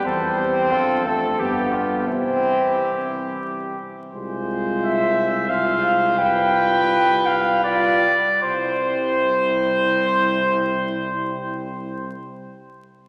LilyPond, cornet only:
\new Staff \with { instrumentName = "Cornet" } { \time 3/4 \key c \major \tempo 4 = 86 a'8 g'8 f'8 a'8 g'8 f'8 | e'2~ e'8 r8 | r4 e''4 f''4 | g''4. f''8 d''4 |
c''2.~ | c''2. | }